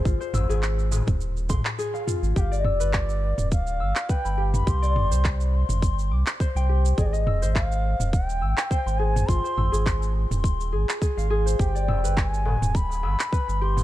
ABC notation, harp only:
X:1
M:4/4
L:1/16
Q:"Swing 16ths" 1/4=104
K:none
V:1 name="Harp"
F c e' _A z6 c'2 A f F z | G d e' B z6 e'2 B b G z | G d d' c z6 d'2 c g G z | _A _e =e' c z6 e'2 c c' A z |
F c e' _A z6 A z A f A c | G d e' B z6 e'2 B b G z |]